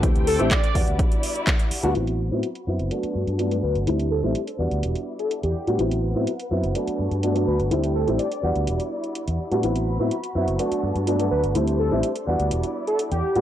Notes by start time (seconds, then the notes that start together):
0.03 D2 A3 C4 D4 E4 G4 C5 G5, kick, closed hi-hat
0.16 closed hi-hat
0.27 A4, open hi-hat
0.39 A1 A3 C4 E4 G4, closed hi-hat
0.51 D5, kick, clap, closed hi-hat
0.64 closed hi-hat
0.74 E2 G3 B3 D4 E4 F#4 D5, kick, open hi-hat
0.87 D2, closed hi-hat
0.99 kick, closed hi-hat
1.12 closed hi-hat
1.23 open hi-hat
1.36 closed hi-hat
1.47 kick, clap, closed hi-hat
1.59 closed hi-hat
1.71 muted fingered electric bass stroke, open hi-hat
1.83 D2 G3 B3 D4 F#4, closed hi-hat
1.95 A1 F#3 B3 C4 E4 F#4 B5, closed hi-hat
2.07 closed hi-hat
2.31 A2 F#3 B3 C4 E4
2.43 closed hi-hat
2.55 closed hi-hat
2.67 F#2 F#3 B3 C4 E4
2.79 F#1, closed hi-hat
2.91 F#3 A3 B3 D4 B4 A5, closed hi-hat
3.03 muted fingered electric bass stroke, closed hi-hat
3.15 G2
3.27 G2, closed hi-hat
3.38 F#3 A3 B3 D4, closed hi-hat
3.51 F#3 A3 B3 D4, closed hi-hat
3.63 D2 B4
3.75 G1, closed hi-hat
3.87 D2 G3 A3 C4 D4 E4 C5, closed hi-hat
3.99 closed hi-hat
4.11 A4
4.23 A1 G3 A3 C4 E4
4.35 closed hi-hat
4.47 closed hi-hat
4.58 E2 G3 B3 D4 E4 F#4 D5
4.71 D2, closed hi-hat
4.83 E1, closed hi-hat
4.95 closed hi-hat
5.19 A4, closed hi-hat
5.31 closed hi-hat
5.43 E2 G4, closed hi-hat
5.55 muted fingered electric bass stroke
5.67 A2 G3 B3 D4 F#4, closed hi-hat
5.78 A1 F#3 B3 C4 E4 B4 F#5, closed hi-hat
5.91 closed hi-hat
6.15 A2 F#3 B3 C4 E4
6.27 closed hi-hat
6.39 closed hi-hat
6.50 F#2 F#3 B3 C4 E4
6.63 F#1, closed hi-hat
6.74 F#3 A3 B3 D4 F#4 A5, closed hi-hat
6.87 muted fingered electric bass stroke, closed hi-hat
6.99 G2
7.11 G2, closed hi-hat
7.22 F#3 A3 B3 D4, closed hi-hat
7.35 F#3 A3 B3 D4, closed hi-hat
7.47 D2 B4
7.60 G1, closed hi-hat
7.71 D2 G3 A3 C4 D4 E4 C5 G5, closed hi-hat
7.84 closed hi-hat
7.95 A4
8.07 A1 G3 A3 C4 E4, closed hi-hat
8.19 D5, closed hi-hat
8.32 closed hi-hat
8.42 E2 G3 B3 D4 E4 F#4 D5
8.56 D2, closed hi-hat
8.67 E1, closed hi-hat
8.80 closed hi-hat
9.04 closed hi-hat
9.15 closed hi-hat
9.28 E2, closed hi-hat
9.39 muted fingered electric bass stroke
9.51 A2 G3 B3 D4 F#4, closed hi-hat
9.63 A1 F#3 B3 C4 E4 F#4 B5, closed hi-hat
9.76 closed hi-hat
9.99 A2 F#3 B3 C4 E4
10.11 closed hi-hat
10.24 closed hi-hat
10.35 F#2 F#3 B3 C4 E4
10.48 F#1, closed hi-hat
10.59 F#3 A3 B3 D4 B4 A5, closed hi-hat
10.72 muted fingered electric bass stroke, closed hi-hat
10.83 G2
10.96 G2, closed hi-hat
11.07 F#3 A3 B3 D4, closed hi-hat
11.19 F#3 A3 B3 D4, closed hi-hat
11.31 D2 B4
11.44 G1, closed hi-hat
11.55 D2 G3 A3 C4 D4 E4 C5, closed hi-hat
11.67 closed hi-hat
11.79 A4
11.91 A1 G3 A3 C4 E4
12.03 closed hi-hat
12.16 closed hi-hat
12.26 E2 G3 B3 D4 E4 F#4 D5
12.40 D2, closed hi-hat
12.51 E1, closed hi-hat
12.63 closed hi-hat
12.87 A4, closed hi-hat
12.99 closed hi-hat
13.11 E2 G4, closed hi-hat
13.23 muted fingered electric bass stroke
13.35 A2 G3 B3 D4 F#4, closed hi-hat